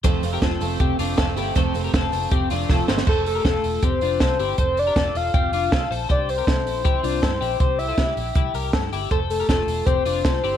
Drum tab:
CC |----------------|----------------|x---------------|----------------|
HH |x-o-x-o-x-o-x-o-|x-o-x-o-x-o-----|--o-x-o-x-o-x-o-|x-o-x-o-x-o-x-o-|
SD |----o-------o---|----o-------o-oo|----o-------o---|----o-------o---|
BD |o---o---o---o---|o---o---o---o---|o---o---o---o---|o---o---o---o---|

CC |----------------|----------------|----------------|
HH |x-o-x-o-x-o-x-o-|x-o-x-o-x-o-x-o-|x-o-x-o-x-o-x-o-|
SD |----o-------o---|----o-------o---|----o-------o---|
BD |o---o---o---o---|o---o---o---o---|o---o---o---o---|